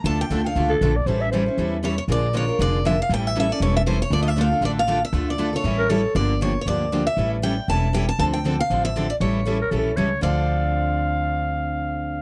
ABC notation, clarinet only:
X:1
M:4/4
L:1/16
Q:"Swing" 1/4=236
K:Dm
V:1 name="Clarinet"
z8 z2 A4 d2 | ^B2 e2 B6- B z4 z | z16 | z16 |
z16 | z8 z2 B2 A4 | z16 | z16 |
z16 | z4 A2 B2 A A3 ^c4 | f16- | f16 |]